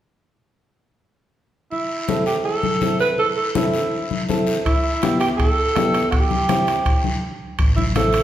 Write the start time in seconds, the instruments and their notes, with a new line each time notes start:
1.71 alto saxophone E4, high conga, long guiro
2.08 upright piano C4 E4 A4, high conga, short guiro
2.26 alto saxophone G4, short guiro
2.44 alto saxophone A4, long guiro
2.63 high conga
2.81 upright piano C4 E4 A4, high conga, short guiro
3.00 alto saxophone B4, high conga, short guiro
3.18 alto saxophone A4, high conga, long guiro
3.37 alto saxophone A4
3.55 upright piano C4 E4 A4, alto saxophone E4, high conga, short guiro
3.74 short guiro
3.92 long guiro
4.11 high conga
4.29 upright piano C4 E4 A4, high conga, short guiro
4.47 high conga, short guiro
4.65 alto saxophone E4, bombo low, high conga, high timbale, long guiro
5.02 upright piano B3 E4 G4, bombo rim, high conga, high timbale, short guiro
5.20 alto saxophone G4, high timbale, short guiro
5.37 alto saxophone A4, bombo low, high timbale, long guiro
5.76 upright piano B3 E4 G4, bombo rim, high conga, high timbale, low timbale, short guiro
5.94 high conga, high timbale, short guiro
6.11 alto saxophone G4, bombo low, high conga, high timbale, long guiro
6.31 high conga
6.49 upright piano C4 E4 G4, bombo rim, high conga, high timbale, short guiro
6.67 high timbale, short guiro
6.85 bombo low, high timbale, long guiro
7.04 high conga
7.59 fingered electric bass A1, bombo low, high conga, high timbale, long guiro
7.76 alto saxophone E4, high conga
7.95 upright piano C4 E4 A4, alto saxophone A4, bombo rim, high conga, high timbale, short guiro
8.13 high timbale, short guiro